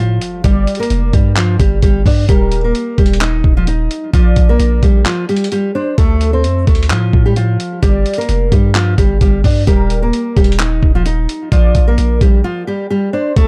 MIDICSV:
0, 0, Header, 1, 7, 480
1, 0, Start_track
1, 0, Tempo, 461538
1, 460, Time_signature, 4, 2, 24, 8
1, 14016, End_track
2, 0, Start_track
2, 0, Title_t, "Soft synth lead"
2, 0, Program_c, 0, 80
2, 461, Note_on_c, 0, 74, 108
2, 912, Note_off_c, 0, 74, 0
2, 2380, Note_on_c, 0, 70, 109
2, 2831, Note_off_c, 0, 70, 0
2, 4301, Note_on_c, 0, 74, 104
2, 4752, Note_off_c, 0, 74, 0
2, 5978, Note_on_c, 0, 72, 82
2, 6207, Note_off_c, 0, 72, 0
2, 6219, Note_on_c, 0, 69, 112
2, 6671, Note_off_c, 0, 69, 0
2, 8138, Note_on_c, 0, 74, 108
2, 8590, Note_off_c, 0, 74, 0
2, 10061, Note_on_c, 0, 70, 113
2, 10512, Note_off_c, 0, 70, 0
2, 11980, Note_on_c, 0, 74, 108
2, 12431, Note_off_c, 0, 74, 0
2, 13656, Note_on_c, 0, 72, 83
2, 13886, Note_off_c, 0, 72, 0
2, 13899, Note_on_c, 0, 69, 115
2, 14016, Note_off_c, 0, 69, 0
2, 14016, End_track
3, 0, Start_track
3, 0, Title_t, "Nylon-string guitar"
3, 0, Program_c, 1, 24
3, 0, Note_on_c, 1, 53, 55
3, 0, Note_on_c, 1, 65, 84
3, 430, Note_off_c, 1, 65, 0
3, 434, Note_off_c, 1, 53, 0
3, 457, Note_on_c, 1, 67, 108
3, 466, Note_on_c, 1, 55, 76
3, 803, Note_off_c, 1, 67, 0
3, 808, Note_off_c, 1, 55, 0
3, 827, Note_on_c, 1, 70, 82
3, 836, Note_on_c, 1, 58, 56
3, 1159, Note_off_c, 1, 70, 0
3, 1163, Note_off_c, 1, 58, 0
3, 1179, Note_on_c, 1, 67, 73
3, 1188, Note_on_c, 1, 55, 65
3, 1368, Note_off_c, 1, 67, 0
3, 1374, Note_off_c, 1, 55, 0
3, 1422, Note_on_c, 1, 65, 95
3, 1431, Note_on_c, 1, 53, 74
3, 1610, Note_off_c, 1, 65, 0
3, 1615, Note_off_c, 1, 53, 0
3, 1661, Note_on_c, 1, 67, 82
3, 1669, Note_on_c, 1, 55, 66
3, 1849, Note_off_c, 1, 67, 0
3, 1854, Note_off_c, 1, 55, 0
3, 1903, Note_on_c, 1, 67, 91
3, 1912, Note_on_c, 1, 55, 68
3, 2091, Note_off_c, 1, 67, 0
3, 2096, Note_off_c, 1, 55, 0
3, 2144, Note_on_c, 1, 62, 78
3, 2153, Note_on_c, 1, 74, 59
3, 2331, Note_off_c, 1, 62, 0
3, 2336, Note_off_c, 1, 74, 0
3, 2382, Note_on_c, 1, 67, 109
3, 2390, Note_on_c, 1, 55, 79
3, 2726, Note_off_c, 1, 67, 0
3, 2731, Note_off_c, 1, 55, 0
3, 2748, Note_on_c, 1, 70, 75
3, 2756, Note_on_c, 1, 58, 63
3, 3079, Note_off_c, 1, 70, 0
3, 3084, Note_off_c, 1, 58, 0
3, 3101, Note_on_c, 1, 67, 81
3, 3109, Note_on_c, 1, 55, 60
3, 3289, Note_off_c, 1, 67, 0
3, 3294, Note_off_c, 1, 55, 0
3, 3341, Note_on_c, 1, 63, 86
3, 3348, Note_on_c, 1, 75, 64
3, 3686, Note_off_c, 1, 63, 0
3, 3690, Note_off_c, 1, 75, 0
3, 3711, Note_on_c, 1, 65, 86
3, 3718, Note_on_c, 1, 53, 59
3, 3798, Note_off_c, 1, 65, 0
3, 3803, Note_off_c, 1, 53, 0
3, 3822, Note_on_c, 1, 63, 75
3, 3830, Note_on_c, 1, 75, 58
3, 4272, Note_off_c, 1, 63, 0
3, 4276, Note_off_c, 1, 75, 0
3, 4300, Note_on_c, 1, 65, 104
3, 4308, Note_on_c, 1, 53, 75
3, 4645, Note_off_c, 1, 65, 0
3, 4649, Note_off_c, 1, 53, 0
3, 4671, Note_on_c, 1, 70, 78
3, 4679, Note_on_c, 1, 58, 60
3, 5001, Note_off_c, 1, 70, 0
3, 5005, Note_off_c, 1, 58, 0
3, 5023, Note_on_c, 1, 67, 74
3, 5031, Note_on_c, 1, 55, 66
3, 5210, Note_off_c, 1, 67, 0
3, 5215, Note_off_c, 1, 55, 0
3, 5258, Note_on_c, 1, 65, 97
3, 5267, Note_on_c, 1, 53, 74
3, 5447, Note_off_c, 1, 65, 0
3, 5453, Note_off_c, 1, 53, 0
3, 5502, Note_on_c, 1, 67, 85
3, 5510, Note_on_c, 1, 55, 70
3, 5690, Note_off_c, 1, 67, 0
3, 5695, Note_off_c, 1, 55, 0
3, 5740, Note_on_c, 1, 67, 86
3, 5749, Note_on_c, 1, 55, 67
3, 5929, Note_off_c, 1, 67, 0
3, 5934, Note_off_c, 1, 55, 0
3, 5980, Note_on_c, 1, 62, 77
3, 5988, Note_on_c, 1, 74, 67
3, 6168, Note_off_c, 1, 62, 0
3, 6173, Note_off_c, 1, 74, 0
3, 6218, Note_on_c, 1, 69, 103
3, 6226, Note_on_c, 1, 57, 88
3, 6564, Note_off_c, 1, 69, 0
3, 6568, Note_off_c, 1, 57, 0
3, 6585, Note_on_c, 1, 72, 74
3, 6593, Note_on_c, 1, 60, 61
3, 6918, Note_off_c, 1, 72, 0
3, 6922, Note_off_c, 1, 60, 0
3, 6940, Note_on_c, 1, 69, 70
3, 6948, Note_on_c, 1, 57, 56
3, 7129, Note_off_c, 1, 69, 0
3, 7133, Note_off_c, 1, 57, 0
3, 7180, Note_on_c, 1, 65, 86
3, 7188, Note_on_c, 1, 53, 64
3, 7525, Note_off_c, 1, 65, 0
3, 7529, Note_off_c, 1, 53, 0
3, 7547, Note_on_c, 1, 67, 82
3, 7554, Note_on_c, 1, 55, 64
3, 7635, Note_off_c, 1, 67, 0
3, 7640, Note_off_c, 1, 55, 0
3, 7658, Note_on_c, 1, 65, 82
3, 7666, Note_on_c, 1, 53, 56
3, 8110, Note_off_c, 1, 65, 0
3, 8114, Note_off_c, 1, 53, 0
3, 8137, Note_on_c, 1, 67, 106
3, 8146, Note_on_c, 1, 55, 77
3, 8484, Note_off_c, 1, 67, 0
3, 8488, Note_off_c, 1, 55, 0
3, 8507, Note_on_c, 1, 70, 84
3, 8515, Note_on_c, 1, 58, 59
3, 8839, Note_off_c, 1, 70, 0
3, 8843, Note_off_c, 1, 58, 0
3, 8859, Note_on_c, 1, 67, 74
3, 8867, Note_on_c, 1, 55, 67
3, 9048, Note_off_c, 1, 67, 0
3, 9053, Note_off_c, 1, 55, 0
3, 9104, Note_on_c, 1, 65, 97
3, 9111, Note_on_c, 1, 53, 77
3, 9291, Note_off_c, 1, 65, 0
3, 9296, Note_off_c, 1, 53, 0
3, 9342, Note_on_c, 1, 67, 83
3, 9350, Note_on_c, 1, 55, 67
3, 9530, Note_off_c, 1, 67, 0
3, 9535, Note_off_c, 1, 55, 0
3, 9584, Note_on_c, 1, 67, 91
3, 9591, Note_on_c, 1, 55, 67
3, 9771, Note_off_c, 1, 67, 0
3, 9775, Note_off_c, 1, 55, 0
3, 9822, Note_on_c, 1, 62, 79
3, 9831, Note_on_c, 1, 74, 59
3, 10010, Note_off_c, 1, 62, 0
3, 10015, Note_off_c, 1, 74, 0
3, 10059, Note_on_c, 1, 67, 110
3, 10067, Note_on_c, 1, 55, 81
3, 10404, Note_off_c, 1, 67, 0
3, 10409, Note_off_c, 1, 55, 0
3, 10426, Note_on_c, 1, 70, 78
3, 10434, Note_on_c, 1, 58, 62
3, 10758, Note_off_c, 1, 70, 0
3, 10762, Note_off_c, 1, 58, 0
3, 10781, Note_on_c, 1, 67, 83
3, 10788, Note_on_c, 1, 55, 60
3, 10969, Note_off_c, 1, 67, 0
3, 10974, Note_off_c, 1, 55, 0
3, 11021, Note_on_c, 1, 63, 88
3, 11029, Note_on_c, 1, 75, 62
3, 11366, Note_off_c, 1, 63, 0
3, 11370, Note_off_c, 1, 75, 0
3, 11388, Note_on_c, 1, 65, 84
3, 11398, Note_on_c, 1, 53, 61
3, 11477, Note_off_c, 1, 65, 0
3, 11482, Note_off_c, 1, 53, 0
3, 11501, Note_on_c, 1, 63, 78
3, 11508, Note_on_c, 1, 75, 58
3, 11952, Note_off_c, 1, 63, 0
3, 11956, Note_off_c, 1, 75, 0
3, 11980, Note_on_c, 1, 65, 102
3, 11989, Note_on_c, 1, 53, 76
3, 12325, Note_off_c, 1, 65, 0
3, 12330, Note_off_c, 1, 53, 0
3, 12350, Note_on_c, 1, 70, 77
3, 12358, Note_on_c, 1, 58, 59
3, 12680, Note_off_c, 1, 70, 0
3, 12685, Note_off_c, 1, 58, 0
3, 12704, Note_on_c, 1, 67, 73
3, 12712, Note_on_c, 1, 55, 68
3, 12891, Note_off_c, 1, 67, 0
3, 12896, Note_off_c, 1, 55, 0
3, 12940, Note_on_c, 1, 65, 97
3, 12949, Note_on_c, 1, 53, 72
3, 13128, Note_off_c, 1, 65, 0
3, 13134, Note_off_c, 1, 53, 0
3, 13180, Note_on_c, 1, 67, 84
3, 13189, Note_on_c, 1, 55, 71
3, 13369, Note_off_c, 1, 67, 0
3, 13374, Note_off_c, 1, 55, 0
3, 13421, Note_on_c, 1, 67, 82
3, 13429, Note_on_c, 1, 55, 70
3, 13609, Note_off_c, 1, 67, 0
3, 13614, Note_off_c, 1, 55, 0
3, 13657, Note_on_c, 1, 62, 81
3, 13666, Note_on_c, 1, 74, 66
3, 13847, Note_off_c, 1, 62, 0
3, 13852, Note_off_c, 1, 74, 0
3, 13899, Note_on_c, 1, 69, 108
3, 13908, Note_on_c, 1, 57, 88
3, 14016, Note_off_c, 1, 57, 0
3, 14016, Note_off_c, 1, 69, 0
3, 14016, End_track
4, 0, Start_track
4, 0, Title_t, "String section"
4, 0, Program_c, 2, 48
4, 13900, Note_on_c, 2, 50, 81
4, 13900, Note_on_c, 2, 60, 73
4, 13900, Note_on_c, 2, 65, 91
4, 14016, Note_off_c, 2, 50, 0
4, 14016, Note_off_c, 2, 60, 0
4, 14016, Note_off_c, 2, 65, 0
4, 14016, End_track
5, 0, Start_track
5, 0, Title_t, "808-style bass"
5, 0, Program_c, 3, 38
5, 0, Note_on_c, 3, 45, 103
5, 201, Note_off_c, 3, 45, 0
5, 460, Note_on_c, 3, 31, 112
5, 691, Note_off_c, 3, 31, 0
5, 940, Note_on_c, 3, 29, 105
5, 1170, Note_off_c, 3, 29, 0
5, 1180, Note_on_c, 3, 43, 101
5, 1641, Note_off_c, 3, 43, 0
5, 1659, Note_on_c, 3, 31, 106
5, 1890, Note_off_c, 3, 31, 0
5, 1900, Note_on_c, 3, 31, 101
5, 2130, Note_off_c, 3, 31, 0
5, 2139, Note_on_c, 3, 43, 103
5, 2370, Note_off_c, 3, 43, 0
5, 2380, Note_on_c, 3, 27, 110
5, 2841, Note_off_c, 3, 27, 0
5, 3101, Note_on_c, 3, 27, 98
5, 3561, Note_off_c, 3, 27, 0
5, 3579, Note_on_c, 3, 27, 104
5, 4040, Note_off_c, 3, 27, 0
5, 4301, Note_on_c, 3, 34, 110
5, 4531, Note_off_c, 3, 34, 0
5, 4541, Note_on_c, 3, 34, 106
5, 4771, Note_off_c, 3, 34, 0
5, 4779, Note_on_c, 3, 34, 110
5, 5010, Note_off_c, 3, 34, 0
5, 5021, Note_on_c, 3, 34, 103
5, 5251, Note_off_c, 3, 34, 0
5, 6220, Note_on_c, 3, 38, 104
5, 6700, Note_on_c, 3, 41, 99
5, 6716, Note_off_c, 3, 38, 0
5, 6928, Note_off_c, 3, 41, 0
5, 6940, Note_on_c, 3, 38, 109
5, 7181, Note_on_c, 3, 45, 97
5, 7196, Note_off_c, 3, 38, 0
5, 7408, Note_off_c, 3, 45, 0
5, 7420, Note_on_c, 3, 45, 104
5, 7881, Note_off_c, 3, 45, 0
5, 8140, Note_on_c, 3, 31, 107
5, 8370, Note_off_c, 3, 31, 0
5, 8621, Note_on_c, 3, 29, 107
5, 8851, Note_off_c, 3, 29, 0
5, 8860, Note_on_c, 3, 43, 104
5, 9321, Note_off_c, 3, 43, 0
5, 9340, Note_on_c, 3, 31, 102
5, 9570, Note_off_c, 3, 31, 0
5, 9580, Note_on_c, 3, 31, 102
5, 9810, Note_off_c, 3, 31, 0
5, 9819, Note_on_c, 3, 43, 102
5, 10050, Note_off_c, 3, 43, 0
5, 10060, Note_on_c, 3, 27, 112
5, 10521, Note_off_c, 3, 27, 0
5, 10780, Note_on_c, 3, 27, 102
5, 11241, Note_off_c, 3, 27, 0
5, 11259, Note_on_c, 3, 27, 107
5, 11720, Note_off_c, 3, 27, 0
5, 11979, Note_on_c, 3, 34, 109
5, 12210, Note_off_c, 3, 34, 0
5, 12220, Note_on_c, 3, 34, 102
5, 12451, Note_off_c, 3, 34, 0
5, 12460, Note_on_c, 3, 34, 103
5, 12690, Note_off_c, 3, 34, 0
5, 12700, Note_on_c, 3, 34, 101
5, 12930, Note_off_c, 3, 34, 0
5, 13900, Note_on_c, 3, 38, 106
5, 14016, Note_off_c, 3, 38, 0
5, 14016, End_track
6, 0, Start_track
6, 0, Title_t, "Impact"
6, 0, Program_c, 4, 103
6, 0, Note_on_c, 4, 60, 86
6, 460, Note_off_c, 4, 60, 0
6, 14016, End_track
7, 0, Start_track
7, 0, Title_t, "Drums"
7, 223, Note_on_c, 9, 42, 81
7, 327, Note_off_c, 9, 42, 0
7, 459, Note_on_c, 9, 42, 82
7, 460, Note_on_c, 9, 36, 122
7, 563, Note_off_c, 9, 42, 0
7, 564, Note_off_c, 9, 36, 0
7, 700, Note_on_c, 9, 42, 63
7, 780, Note_off_c, 9, 42, 0
7, 780, Note_on_c, 9, 42, 67
7, 860, Note_off_c, 9, 42, 0
7, 860, Note_on_c, 9, 42, 67
7, 939, Note_off_c, 9, 42, 0
7, 939, Note_on_c, 9, 42, 80
7, 1043, Note_off_c, 9, 42, 0
7, 1179, Note_on_c, 9, 42, 66
7, 1181, Note_on_c, 9, 36, 98
7, 1283, Note_off_c, 9, 42, 0
7, 1285, Note_off_c, 9, 36, 0
7, 1420, Note_on_c, 9, 39, 115
7, 1421, Note_on_c, 9, 42, 88
7, 1524, Note_off_c, 9, 39, 0
7, 1525, Note_off_c, 9, 42, 0
7, 1659, Note_on_c, 9, 36, 100
7, 1659, Note_on_c, 9, 42, 74
7, 1763, Note_off_c, 9, 36, 0
7, 1763, Note_off_c, 9, 42, 0
7, 1898, Note_on_c, 9, 42, 75
7, 1900, Note_on_c, 9, 36, 96
7, 2002, Note_off_c, 9, 42, 0
7, 2004, Note_off_c, 9, 36, 0
7, 2139, Note_on_c, 9, 36, 81
7, 2143, Note_on_c, 9, 46, 59
7, 2243, Note_off_c, 9, 36, 0
7, 2247, Note_off_c, 9, 46, 0
7, 2379, Note_on_c, 9, 42, 78
7, 2380, Note_on_c, 9, 36, 120
7, 2483, Note_off_c, 9, 42, 0
7, 2484, Note_off_c, 9, 36, 0
7, 2616, Note_on_c, 9, 42, 76
7, 2720, Note_off_c, 9, 42, 0
7, 2859, Note_on_c, 9, 42, 77
7, 2963, Note_off_c, 9, 42, 0
7, 3100, Note_on_c, 9, 36, 95
7, 3100, Note_on_c, 9, 42, 42
7, 3100, Note_on_c, 9, 46, 52
7, 3180, Note_off_c, 9, 42, 0
7, 3180, Note_on_c, 9, 42, 55
7, 3204, Note_off_c, 9, 36, 0
7, 3204, Note_off_c, 9, 46, 0
7, 3260, Note_off_c, 9, 42, 0
7, 3260, Note_on_c, 9, 42, 73
7, 3340, Note_on_c, 9, 39, 111
7, 3342, Note_off_c, 9, 42, 0
7, 3342, Note_on_c, 9, 42, 87
7, 3444, Note_off_c, 9, 39, 0
7, 3446, Note_off_c, 9, 42, 0
7, 3579, Note_on_c, 9, 36, 104
7, 3683, Note_off_c, 9, 36, 0
7, 3819, Note_on_c, 9, 42, 74
7, 3923, Note_off_c, 9, 42, 0
7, 4064, Note_on_c, 9, 42, 81
7, 4168, Note_off_c, 9, 42, 0
7, 4300, Note_on_c, 9, 36, 122
7, 4300, Note_on_c, 9, 42, 82
7, 4404, Note_off_c, 9, 36, 0
7, 4404, Note_off_c, 9, 42, 0
7, 4537, Note_on_c, 9, 42, 78
7, 4541, Note_on_c, 9, 36, 92
7, 4641, Note_off_c, 9, 42, 0
7, 4645, Note_off_c, 9, 36, 0
7, 4779, Note_on_c, 9, 42, 79
7, 4883, Note_off_c, 9, 42, 0
7, 5020, Note_on_c, 9, 36, 97
7, 5020, Note_on_c, 9, 42, 67
7, 5124, Note_off_c, 9, 36, 0
7, 5124, Note_off_c, 9, 42, 0
7, 5259, Note_on_c, 9, 39, 112
7, 5260, Note_on_c, 9, 42, 88
7, 5363, Note_off_c, 9, 39, 0
7, 5364, Note_off_c, 9, 42, 0
7, 5500, Note_on_c, 9, 42, 46
7, 5580, Note_off_c, 9, 42, 0
7, 5580, Note_on_c, 9, 42, 63
7, 5660, Note_off_c, 9, 42, 0
7, 5660, Note_on_c, 9, 42, 76
7, 5738, Note_off_c, 9, 42, 0
7, 5738, Note_on_c, 9, 42, 75
7, 5842, Note_off_c, 9, 42, 0
7, 6219, Note_on_c, 9, 42, 81
7, 6220, Note_on_c, 9, 36, 122
7, 6323, Note_off_c, 9, 42, 0
7, 6324, Note_off_c, 9, 36, 0
7, 6456, Note_on_c, 9, 42, 75
7, 6560, Note_off_c, 9, 42, 0
7, 6698, Note_on_c, 9, 42, 79
7, 6802, Note_off_c, 9, 42, 0
7, 6939, Note_on_c, 9, 46, 51
7, 6940, Note_on_c, 9, 36, 96
7, 6940, Note_on_c, 9, 42, 41
7, 7020, Note_off_c, 9, 42, 0
7, 7020, Note_on_c, 9, 42, 57
7, 7043, Note_off_c, 9, 46, 0
7, 7044, Note_off_c, 9, 36, 0
7, 7100, Note_off_c, 9, 42, 0
7, 7100, Note_on_c, 9, 42, 73
7, 7180, Note_on_c, 9, 39, 109
7, 7181, Note_off_c, 9, 42, 0
7, 7181, Note_on_c, 9, 42, 87
7, 7284, Note_off_c, 9, 39, 0
7, 7285, Note_off_c, 9, 42, 0
7, 7419, Note_on_c, 9, 36, 103
7, 7523, Note_off_c, 9, 36, 0
7, 7658, Note_on_c, 9, 42, 72
7, 7762, Note_off_c, 9, 42, 0
7, 7903, Note_on_c, 9, 42, 84
7, 8007, Note_off_c, 9, 42, 0
7, 8140, Note_on_c, 9, 36, 119
7, 8140, Note_on_c, 9, 42, 78
7, 8244, Note_off_c, 9, 36, 0
7, 8244, Note_off_c, 9, 42, 0
7, 8380, Note_on_c, 9, 42, 67
7, 8461, Note_off_c, 9, 42, 0
7, 8461, Note_on_c, 9, 42, 65
7, 8540, Note_off_c, 9, 42, 0
7, 8540, Note_on_c, 9, 42, 66
7, 8619, Note_off_c, 9, 42, 0
7, 8619, Note_on_c, 9, 42, 79
7, 8723, Note_off_c, 9, 42, 0
7, 8860, Note_on_c, 9, 36, 97
7, 8860, Note_on_c, 9, 42, 66
7, 8964, Note_off_c, 9, 36, 0
7, 8964, Note_off_c, 9, 42, 0
7, 9100, Note_on_c, 9, 39, 117
7, 9101, Note_on_c, 9, 42, 83
7, 9204, Note_off_c, 9, 39, 0
7, 9205, Note_off_c, 9, 42, 0
7, 9340, Note_on_c, 9, 36, 101
7, 9340, Note_on_c, 9, 42, 76
7, 9444, Note_off_c, 9, 36, 0
7, 9444, Note_off_c, 9, 42, 0
7, 9578, Note_on_c, 9, 42, 72
7, 9580, Note_on_c, 9, 36, 101
7, 9682, Note_off_c, 9, 42, 0
7, 9684, Note_off_c, 9, 36, 0
7, 9820, Note_on_c, 9, 36, 81
7, 9823, Note_on_c, 9, 46, 60
7, 9924, Note_off_c, 9, 36, 0
7, 9927, Note_off_c, 9, 46, 0
7, 10059, Note_on_c, 9, 42, 79
7, 10060, Note_on_c, 9, 36, 120
7, 10163, Note_off_c, 9, 42, 0
7, 10164, Note_off_c, 9, 36, 0
7, 10297, Note_on_c, 9, 42, 77
7, 10401, Note_off_c, 9, 42, 0
7, 10539, Note_on_c, 9, 42, 79
7, 10643, Note_off_c, 9, 42, 0
7, 10780, Note_on_c, 9, 36, 99
7, 10780, Note_on_c, 9, 42, 43
7, 10780, Note_on_c, 9, 46, 52
7, 10860, Note_off_c, 9, 42, 0
7, 10860, Note_on_c, 9, 42, 56
7, 10884, Note_off_c, 9, 36, 0
7, 10884, Note_off_c, 9, 46, 0
7, 10941, Note_off_c, 9, 42, 0
7, 10941, Note_on_c, 9, 42, 71
7, 11020, Note_on_c, 9, 39, 117
7, 11021, Note_off_c, 9, 42, 0
7, 11021, Note_on_c, 9, 42, 86
7, 11124, Note_off_c, 9, 39, 0
7, 11125, Note_off_c, 9, 42, 0
7, 11259, Note_on_c, 9, 36, 102
7, 11363, Note_off_c, 9, 36, 0
7, 11498, Note_on_c, 9, 42, 75
7, 11602, Note_off_c, 9, 42, 0
7, 11743, Note_on_c, 9, 42, 82
7, 11847, Note_off_c, 9, 42, 0
7, 11979, Note_on_c, 9, 42, 80
7, 11980, Note_on_c, 9, 36, 122
7, 12083, Note_off_c, 9, 42, 0
7, 12084, Note_off_c, 9, 36, 0
7, 12217, Note_on_c, 9, 42, 78
7, 12220, Note_on_c, 9, 36, 89
7, 12321, Note_off_c, 9, 42, 0
7, 12324, Note_off_c, 9, 36, 0
7, 12459, Note_on_c, 9, 42, 74
7, 12563, Note_off_c, 9, 42, 0
7, 12700, Note_on_c, 9, 36, 98
7, 12700, Note_on_c, 9, 42, 66
7, 12804, Note_off_c, 9, 36, 0
7, 12804, Note_off_c, 9, 42, 0
7, 13900, Note_on_c, 9, 36, 125
7, 13900, Note_on_c, 9, 42, 81
7, 14004, Note_off_c, 9, 36, 0
7, 14004, Note_off_c, 9, 42, 0
7, 14016, End_track
0, 0, End_of_file